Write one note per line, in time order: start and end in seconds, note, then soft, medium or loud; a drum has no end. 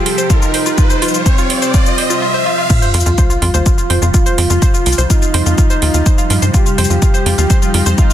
0.00 2.18 C3 medium
0.00 2.18 F3 medium
0.00 2.18 G3 medium
0.00 0.32 G4 loud
0.00 2.19 G4 medium
0.00 riser medium
0.06 0.15 F4 medium
0.06 open hi-hat loud
0.18 0.27 C5 loud
0.18 shaker soft
0.30 1.17 D#4 loud
0.30 0.39 F4 loud
0.30 kick loud
0.30 shaker medium
0.42 0.51 F4 medium
0.42 shaker soft
0.54 0.63 C5 loud
0.54 open hi-hat loud
0.54 shaker soft
0.66 0.75 F4 loud
0.66 shaker soft
0.78 0.87 F4 medium
0.78 kick loud
0.78 shaker medium
0.90 0.99 C5 loud
0.90 shaker soft
1.02 1.11 F4 loud
1.02 open hi-hat loud
1.02 shaker soft
1.08 shaker medium
1.14 1.23 F4 medium
1.14 shaker soft
1.26 2.22 C4 loud
1.26 1.35 C5 loud
1.26 kick loud
1.26 shaker medium
1.38 1.47 F4 loud
1.38 shaker soft
1.50 1.59 F4 medium
1.50 open hi-hat loud
1.62 1.71 C5 loud
1.62 shaker soft
1.74 1.83 F4 loud
1.74 kick loud
1.74 shaker medium
1.86 1.95 F4 medium
1.86 shaker soft
1.98 2.07 C5 loud
1.98 open hi-hat loud
2.10 2.19 F4 loud
2.10 shaker soft
2.22 2.31 F4 medium
2.34 2.43 C5 loud
2.46 2.55 F4 loud
2.58 2.67 F4 medium
2.70 8.13 C3 medium
2.70 8.13 F3 medium
2.70 8.13 G3 medium
2.70 4.04 F4 loud
2.70 6.50 F4 medium
2.70 2.82 F4 medium
2.70 2.82 F5 medium
2.70 kick loud
2.70 crash loud
2.70 sub drop medium
2.70 shaker medium
2.82 2.91 C5 loud
2.82 2.91 C6 medium
2.82 shaker soft
2.94 3.03 F2 medium
2.94 3.05 F4 medium
2.94 3.05 F5 medium
2.94 open hi-hat loud
2.94 shaker soft
3.00 shaker medium
3.06 3.15 F2 medium
3.06 3.17 F4 medium
3.06 3.17 F5 medium
3.06 shaker soft
3.18 3.27 C5 loud
3.18 3.27 C6 medium
3.18 kick loud
3.18 shaker medium
3.30 3.41 F4 medium
3.30 3.41 F5 medium
3.30 shaker soft
3.42 3.50 F2 loud
3.42 3.53 F4 medium
3.42 3.53 F5 medium
3.42 open hi-hat loud
3.54 3.62 D#2 medium
3.54 3.63 C5 loud
3.54 3.63 C6 medium
3.54 shaker soft
3.66 3.77 F4 medium
3.66 3.77 F5 medium
3.66 kick loud
3.66 shaker medium
3.78 3.89 F4 medium
3.78 3.89 F5 medium
3.78 shaker soft
3.90 3.99 F2 medium
3.90 3.99 C5 loud
3.90 3.99 C6 medium
3.90 open hi-hat loud
4.02 4.10 F2 medium
4.02 4.13 F4 medium
4.02 4.13 F5 medium
4.02 shaker soft
4.14 4.25 F4 medium
4.14 5.00 F4 loud
4.14 4.25 F5 medium
4.14 kick loud
4.14 shaker medium
4.26 4.35 C5 loud
4.26 4.35 C6 medium
4.26 shaker soft
4.38 4.47 F2 loud
4.38 4.49 F4 medium
4.38 4.49 F5 medium
4.38 open hi-hat loud
4.38 shaker soft
4.50 4.58 F2 medium
4.50 4.61 F4 medium
4.50 4.61 F5 medium
4.50 shaker soft
4.62 4.71 C5 loud
4.62 4.71 C6 medium
4.62 kick loud
4.62 shaker medium
4.74 4.85 F4 medium
4.74 4.85 F5 medium
4.74 shaker soft
4.86 4.95 C2 medium
4.86 4.97 F4 medium
4.86 4.98 F5 medium
4.86 open hi-hat loud
4.86 shaker soft
4.92 shaker medium
4.98 5.06 C2 medium
4.98 5.07 C5 loud
4.98 5.07 C6 medium
4.98 shaker soft
5.10 6.45 D#4 loud
5.10 5.21 F4 medium
5.10 5.21 F5 medium
5.10 kick loud
5.10 shaker medium
5.22 5.33 F4 medium
5.22 5.33 F5 medium
5.22 shaker soft
5.34 5.43 F2 loud
5.34 5.43 C5 loud
5.34 5.43 C6 medium
5.34 open hi-hat loud
5.46 5.54 F2 medium
5.46 5.57 F4 medium
5.46 5.57 F5 medium
5.46 shaker soft
5.58 5.69 F4 medium
5.58 5.69 F5 medium
5.58 kick loud
5.58 shaker medium
5.70 5.79 C5 loud
5.70 5.79 C6 medium
5.70 shaker soft
5.82 5.91 D#2 loud
5.82 5.93 F4 medium
5.82 5.93 F5 medium
5.82 open hi-hat loud
5.94 6.02 D#2 medium
5.94 6.06 F4 medium
5.94 6.05 F5 medium
5.94 shaker soft
6.06 6.15 C5 loud
6.06 6.15 C6 medium
6.06 kick loud
6.06 shaker medium
6.18 6.29 F4 medium
6.18 6.29 F5 medium
6.18 shaker soft
6.30 6.39 G2 loud
6.30 6.42 F4 medium
6.30 6.41 F5 medium
6.30 open hi-hat loud
6.30 shaker soft
6.42 6.50 G2 medium
6.42 6.51 C5 loud
6.42 6.51 C6 medium
6.42 shaker soft
6.54 8.13 D#4 medium
6.54 6.65 F4 medium
6.54 7.89 G4 loud
6.54 6.65 F5 medium
6.54 kick loud
6.54 shaker medium
6.66 6.77 F4 medium
6.66 6.77 F5 medium
6.66 shaker soft
6.78 6.87 F2 medium
6.78 6.87 C5 loud
6.78 6.87 C6 medium
6.78 open hi-hat loud
6.78 shaker soft
6.84 shaker medium
6.90 6.98 F2 medium
6.90 7.01 F4 medium
6.90 7.01 F5 medium
6.90 shaker soft
7.02 7.13 F4 medium
7.02 7.13 F5 medium
7.02 kick loud
7.02 shaker medium
7.14 7.23 C5 loud
7.14 7.23 C6 medium
7.14 shaker soft
7.26 7.34 F2 medium
7.26 7.37 F4 medium
7.26 7.37 F5 medium
7.26 open hi-hat loud
7.38 7.46 D#2 medium
7.38 7.49 F4 medium
7.38 7.49 F5 medium
7.38 shaker soft
7.50 7.59 C5 loud
7.50 7.59 C6 medium
7.50 kick loud
7.50 shaker medium
7.62 7.73 F4 medium
7.62 7.73 F5 medium
7.62 shaker soft
7.74 7.83 F2 loud
7.74 7.86 F4 medium
7.74 7.86 F5 medium
7.74 open hi-hat loud
7.86 7.95 F2 medium
7.86 7.95 C5 loud
7.86 7.95 C6 medium
7.86 shaker soft
7.98 8.13 D#4 loud
7.98 8.09 F4 medium
7.98 8.09 F5 medium
7.98 kick loud
7.98 shaker medium
8.10 8.13 F4 medium
8.10 8.13 F5 medium
8.10 shaker soft